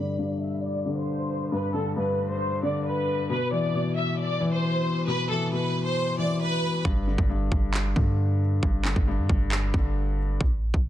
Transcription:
0.00 0.17 G2 medium
0.00 0.84 D3 medium
0.00 0.38 D5 medium
0.18 1.29 G2 medium
0.41 0.61 E5 medium
0.63 0.94 D5 medium
0.85 1.73 D3 medium
0.96 1.48 C5 medium
1.52 1.95 G2 medium
1.52 1.72 B4 loud
1.74 2.62 D3 medium
1.74 1.94 A4 medium
1.96 3.07 G2 medium
1.96 2.27 B4 medium
2.29 2.61 C5 medium
2.63 3.30 D3 medium
2.63 2.83 D5 medium
2.85 3.27 B4 medium
3.29 3.73 B2 medium
3.29 3.50 B4 loud
3.52 4.39 E3 medium
3.52 3.93 D5 medium
3.74 4.85 B2 medium
3.96 4.16 E5 medium
4.18 4.50 D5 medium
4.41 5.28 E3 medium
4.52 5.04 C5 medium
5.07 5.50 B2 medium
5.07 5.28 B4 loud
5.29 6.17 E3 medium
5.29 5.50 A4 medium
5.52 6.63 B2 medium
5.52 5.83 B4 medium
5.85 6.16 C5 medium
6.18 6.85 E3 medium
6.18 6.39 D5 medium
6.41 6.82 B4 medium
6.85 7.17 G1 loud
6.85 7.28 G2 medium
6.85 kick loud
7.07 7.95 D3 medium
7.18 7.50 G1 loud
7.18 kick loud
7.29 8.41 G2 medium
7.52 7.94 G1 loud
7.52 kick loud
7.74 clap loud
7.96 8.60 G2 loud
7.96 8.84 D3 medium
7.96 kick medium
8.63 8.95 G1 loud
8.63 9.06 G2 medium
8.63 kick loud
8.85 9.73 D3 medium
8.85 clap medium
8.96 9.20 G1 loud
8.96 kick medium
9.08 10.18 G2 medium
9.18 9.29 G2 loud
9.29 9.72 G1 loud
9.29 kick loud
9.52 clap loud
9.74 10.38 G1 loud
9.74 10.41 D3 medium
9.74 kick medium
10.41 10.73 A1 loud
10.41 kick loud
10.74 10.89 A1 loud
10.74 kick medium

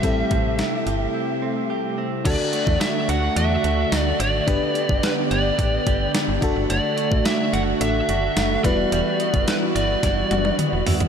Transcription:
0.00 0.24 A1 loud
0.00 2.21 C3 medium
0.00 2.21 G3 medium
0.00 2.26 G3 medium
0.00 2.22 A3 medium
0.00 0.30 C4 medium
0.00 2.21 C4 medium
0.00 0.58 E4 medium
0.00 2.22 E4 medium
0.00 0.86 G4 medium
0.00 2.22 G4 medium
0.00 1.66 E5 medium
0.00 kick loud
0.00 closed hi-hat loud
0.04 2.22 A4 medium
0.31 0.62 A1 loud
0.31 1.41 C4 medium
0.31 kick medium
0.31 closed hi-hat medium
0.59 1.13 E4 medium
0.59 snare loud
0.59 closed hi-hat medium
0.87 1.07 G1 loud
0.87 1.69 G4 medium
0.87 closed hi-hat medium
1.15 2.31 E4 medium
1.42 1.97 C4 medium
1.70 2.31 G4 medium
1.98 2.25 C4 medium
2.24 2.36 D2 loud
2.24 8.60 D3 medium
2.24 2.52 A3 medium
2.24 4.46 A3 medium
2.24 4.43 D4 medium
2.24 4.44 F#4 medium
2.24 4.46 F#4 medium
2.24 4.44 A4 medium
2.24 2.77 D5 loud
2.24 kick loud
2.24 closed hi-hat loud
2.24 crash loud
2.53 3.91 A3 medium
2.53 closed hi-hat medium
2.67 2.78 E2 medium
2.67 kick medium
2.81 3.36 D4 medium
2.81 3.10 E5 loud
2.81 snare loud
2.81 closed hi-hat medium
2.81 tambourine medium
3.09 3.30 D2 medium
3.09 3.63 F#4 medium
3.09 3.35 F#5 loud
3.09 closed hi-hat medium
3.37 3.57 E2 loud
3.37 4.20 D4 medium
3.37 3.99 E5 loud
3.37 closed hi-hat loud
3.64 3.85 D2 medium
3.64 4.53 F#4 medium
3.64 closed hi-hat medium
3.92 4.13 D2 medium
3.92 4.47 A3 medium
3.92 snare loud
3.92 closed hi-hat medium
3.92 tambourine medium
3.99 4.20 D5 loud
4.20 4.41 G#1 medium
4.20 5.03 D4 medium
4.20 5.06 D5 loud
4.20 closed hi-hat medium
4.47 4.58 G1 loud
4.47 6.40 B3 medium
4.47 4.75 B3 medium
4.47 6.38 D4 medium
4.47 6.40 G4 medium
4.47 6.38 G4 medium
4.47 6.39 B4 medium
4.47 kick loud
4.47 closed hi-hat medium
4.75 6.13 B3 medium
4.75 closed hi-hat medium
4.89 5.00 F#1 medium
4.89 kick medium
5.03 5.59 D4 medium
5.03 5.11 B4 medium
5.03 snare loud
5.03 closed hi-hat medium
5.03 tambourine medium
5.31 5.52 G1 loud
5.31 5.86 G4 medium
5.31 6.11 D5 medium
5.31 closed hi-hat medium
5.59 5.80 A1 loud
5.59 7.25 D4 medium
5.59 kick loud
5.59 closed hi-hat loud
5.87 6.08 G1 medium
5.87 6.48 G4 medium
5.87 kick loud
5.87 closed hi-hat medium
6.15 6.42 B3 medium
6.15 snare loud
6.15 closed hi-hat loud
6.15 tambourine medium
6.28 6.39 G1 medium
6.41 6.53 F#1 medium
6.41 6.69 A3 medium
6.41 8.62 A3 medium
6.41 7.78 D4 medium
6.41 7.78 F#4 medium
6.41 11.08 F#4 medium
6.41 7.79 A4 medium
6.41 kick loud
6.41 closed hi-hat medium
6.56 6.66 G1 loud
6.70 6.80 F#1 loud
6.70 6.97 A3 medium
6.70 7.25 D5 loud
6.70 closed hi-hat medium
6.98 8.36 A3 medium
6.98 closed hi-hat medium
7.12 7.22 A1 medium
7.12 kick loud
7.25 7.80 D4 medium
7.25 7.54 E5 loud
7.25 snare loud
7.25 closed hi-hat medium
7.25 tambourine medium
7.53 7.74 F#1 medium
7.53 8.09 F#4 medium
7.53 7.61 F#5 loud
7.53 closed hi-hat medium
7.81 8.02 A1 loud
7.81 8.64 D4 medium
7.81 8.70 D4 medium
7.81 8.64 F#4 soft
7.81 8.65 A4 medium
7.81 8.60 E5 loud
7.81 closed hi-hat loud
8.09 8.30 F#1 medium
8.09 8.95 F#4 medium
8.09 closed hi-hat medium
8.37 8.57 F#1 medium
8.37 8.70 A3 medium
8.37 snare loud
8.37 closed hi-hat medium
8.37 tambourine medium
8.63 8.85 E1 loud
8.63 11.08 E3 medium
8.63 10.82 G3 medium
8.63 8.91 G3 medium
8.63 11.08 G3 medium
8.63 10.82 B3 medium
8.63 10.83 E4 medium
8.63 10.83 F#4 medium
8.63 10.83 B4 medium
8.63 9.50 D5 loud
8.63 kick loud
8.63 closed hi-hat medium
8.92 9.03 E1 loud
8.92 11.08 G3 medium
8.92 closed hi-hat loud
9.20 10.58 B3 medium
9.20 closed hi-hat medium
9.34 9.44 F#1 medium
9.34 kick medium
9.34 closed hi-hat medium
9.48 10.02 E4 medium
9.48 9.55 B4 medium
9.48 snare loud
9.48 closed hi-hat medium
9.48 tambourine medium
9.75 9.96 G1 medium
9.75 10.31 F#4 medium
9.75 10.55 D5 medium
9.75 closed hi-hat medium
10.03 10.24 F#1 loud
10.03 10.85 E4 medium
10.03 kick medium
10.03 snare medium
10.03 closed hi-hat loud
10.31 10.52 F#1 medium
10.31 11.08 F#4 medium
10.31 closed hi-hat medium
10.31 high tom medium
10.45 high tom medium
10.59 11.08 B3 medium
10.59 closed hi-hat medium
10.59 mid tom medium
10.73 10.83 E1 medium
10.87 10.97 E2 medium
10.87 11.08 E4 medium
10.87 floor tom loud
10.87 open hi-hat medium
11.00 11.08 D#2 medium
11.00 closed hi-hat medium
11.00 floor tom loud

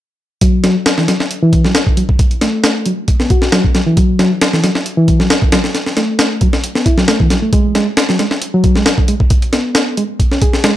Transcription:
0.41 0.63 F#3 medium
0.41 kick loud
0.41 closed hi-hat medium
0.64 0.75 F#3 medium
0.64 snare soft
0.64 closed hi-hat medium
0.86 snare loud
0.86 closed hi-hat medium
0.98 1.05 E3 medium
0.98 snare soft
1.08 1.13 F#3 medium
1.08 snare soft
1.08 closed hi-hat medium
1.20 snare soft
1.31 closed hi-hat medium
1.42 1.63 E3 medium
1.53 kick medium
1.53 closed hi-hat medium
1.64 1.72 F#3 medium
1.64 snare soft
1.75 snare loud
1.75 closed hi-hat medium
1.87 kick medium
1.97 2.02 F#3 medium
1.97 closed hi-hat medium
2.09 kick medium
2.19 kick loud
2.19 closed hi-hat medium
2.31 closed hi-hat soft
2.41 2.85 A3 medium
2.41 snare medium
2.41 closed hi-hat medium
2.64 snare loud
2.64 closed hi-hat medium
2.86 2.91 F#3 medium
2.86 closed hi-hat medium
3.08 kick medium
3.08 closed hi-hat medium
3.20 3.30 B3 medium
3.20 snare soft
3.30 3.52 F#4 medium
3.30 kick medium
3.30 closed hi-hat medium
3.42 snare soft
3.52 3.61 F#3 loud
3.52 snare loud
3.52 closed hi-hat medium
3.64 kick medium
3.75 3.80 F#3 medium
3.75 snare soft
3.75 closed hi-hat medium
3.87 3.96 E3 medium
3.97 4.18 F#3 medium
3.97 kick loud
3.97 closed hi-hat medium
4.19 4.31 F#3 medium
4.19 snare soft
4.19 closed hi-hat medium
4.42 snare loud
4.42 closed hi-hat medium
4.53 4.61 E3 medium
4.53 snare soft
4.64 4.69 F#3 medium
4.64 snare soft
4.64 closed hi-hat medium
4.75 snare soft
4.86 closed hi-hat medium
4.97 5.19 E3 medium
5.08 kick medium
5.08 closed hi-hat medium
5.20 5.27 F#3 medium
5.20 snare soft
5.30 snare loud
5.30 closed hi-hat medium
5.42 kick medium
5.52 5.58 F#3 medium
5.52 snare medium
5.52 closed hi-hat medium
5.64 snare soft
5.75 snare soft
5.75 closed hi-hat medium
5.86 snare soft
5.97 6.40 A3 medium
5.97 snare medium
5.97 closed hi-hat medium
6.19 snare loud
6.19 closed hi-hat medium
6.41 6.47 F#3 medium
6.41 kick medium
6.41 closed hi-hat medium
6.53 snare soft
6.64 closed hi-hat medium
6.75 6.85 B3 medium
6.75 snare soft
6.86 6.97 E4 medium
6.86 kick medium
6.86 closed hi-hat medium
6.98 7.05 F#3 medium
6.98 snare soft
7.08 7.20 A3 medium
7.08 snare loud
7.08 closed hi-hat medium
7.20 7.28 E3 medium
7.20 kick medium
7.30 7.36 F#3 medium
7.30 snare soft
7.30 closed hi-hat medium
7.42 7.50 A3 medium
7.53 7.74 G#3 medium
7.53 kick loud
7.53 closed hi-hat medium
7.75 7.86 G#3 medium
7.75 snare soft
7.75 closed hi-hat medium
7.97 snare loud
7.97 closed hi-hat medium
8.09 8.17 F#3 medium
8.09 snare soft
8.19 8.25 G#3 medium
8.19 snare soft
8.19 closed hi-hat medium
8.31 snare soft
8.42 closed hi-hat medium
8.54 8.75 F#3 loud
8.64 kick medium
8.64 closed hi-hat medium
8.76 8.83 G#3 medium
8.76 snare soft
8.86 snare loud
8.86 closed hi-hat medium
8.98 kick medium
9.08 9.14 G#3 medium
9.08 closed hi-hat medium
9.20 kick medium
9.30 kick loud
9.30 closed hi-hat medium
9.42 closed hi-hat soft
9.53 9.96 B3 medium
9.53 snare medium
9.53 closed hi-hat medium
9.75 snare loud
9.75 closed hi-hat medium
9.97 10.02 G#3 medium
9.97 closed hi-hat medium
10.20 kick medium
10.20 closed hi-hat medium
10.31 10.41 C#4 medium
10.31 snare soft
10.42 10.63 G#4 medium
10.42 kick medium
10.42 closed hi-hat medium
10.53 snare soft
10.64 10.72 G#3 loud
10.64 snare loud
10.64 closed hi-hat medium

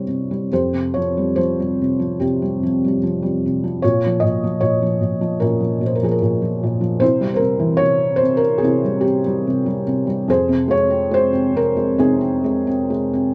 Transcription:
0.00 0.08 C3 soft
0.00 0.31 G3 soft
0.00 0.48 E4 soft
0.00 0.52 C5 medium
0.00 0.53 C#5 medium
0.08 0.50 C3 soft
0.31 0.51 G3 soft
0.52 3.80 F2 soft
0.52 2.17 G4 soft
0.52 0.96 C5 medium
0.73 1.80 C3 soft
0.94 1.36 F3 soft
0.94 1.37 C#5 medium
1.17 1.58 G3 soft
1.36 1.98 F3 soft
1.36 2.23 C5 medium
1.60 2.41 G3 soft
1.81 2.19 C3 soft
2.00 2.62 F3 soft
2.20 3.44 C3 soft
2.20 3.79 C4 soft
2.20 2.98 G4 soft
2.42 2.83 G3 soft
2.63 3.02 F3 soft
2.84 3.21 G3 soft
3.03 3.62 F3 soft
3.23 3.81 G3 soft
3.46 3.83 C3 soft
3.64 3.83 F3 soft
3.82 4.22 A#2 medium
3.82 5.37 F4 soft
3.82 4.24 C#5 medium
4.06 4.42 F3 soft
4.20 4.60 A#2 soft
4.20 4.62 D#5 medium
4.44 4.81 F3 soft
4.61 5.00 A#2 soft
4.61 5.43 C#5 medium
4.82 5.20 F3 soft
5.01 5.40 A#2 soft
5.21 5.59 F3 soft
5.40 5.80 A#2 medium
5.40 6.97 C#4 soft
5.40 5.83 A#4 medium
5.61 6.01 F3 soft
5.81 6.21 A#2 soft
5.86 5.95 C5 soft
5.95 6.04 A#4 soft
6.03 6.40 F3 soft
6.03 6.13 G#4 medium
6.11 6.21 A#4 medium
6.22 6.62 A#2 soft
6.42 6.79 F3 soft
6.63 7.01 A#2 soft
6.81 7.00 F3 soft
7.00 7.39 C3 medium
7.00 8.60 E4 medium
7.00 7.32 C5 medium
7.21 8.80 G3 soft
7.34 7.80 A#4 medium
7.34 7.41 C5 medium
7.41 7.80 C3 soft
7.59 9.21 E3 medium
7.77 8.21 C#5 medium
7.82 8.21 C3 medium
8.16 8.40 C5 medium
8.22 8.61 C3 soft
8.37 8.61 A#4 medium
8.58 9.04 G#4 medium
8.63 9.03 C3 medium
8.63 10.25 E4 soft
8.84 9.25 G3 soft
9.01 9.46 C3 soft
9.01 9.81 G4 medium
9.26 9.65 G3 soft
9.47 9.86 C3 soft
9.66 10.05 G3 soft
9.87 10.27 C3 medium
10.07 10.27 G3 soft
10.28 13.34 F2 medium
10.28 11.95 G#4 medium
10.28 10.72 C5 medium
10.49 11.53 C3 medium
10.68 11.10 G#3 soft
10.68 11.14 C#5 medium
10.90 11.31 C4 soft
11.11 11.75 G#3 medium
11.11 11.57 C5 medium
11.33 12.19 C4 soft
11.55 11.97 C3 soft
11.55 12.01 A#4 medium
11.77 12.43 G#3 soft
11.98 13.34 C3 medium
11.98 13.34 D#4 soft
11.98 13.30 G#4 medium
12.21 12.65 C4 soft
12.44 12.89 G#3 soft
12.67 13.12 C4 soft
12.90 13.34 G#3 medium
13.13 13.34 C4 soft

